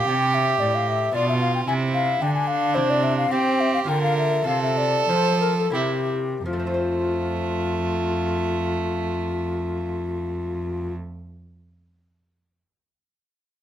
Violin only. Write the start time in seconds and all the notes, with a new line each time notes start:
Already playing: G4
1.15 F4
1.68 E4
2.22 D4
3.31 G4
3.88 A#4
4.47 A4
5.74 E4
6.45 A3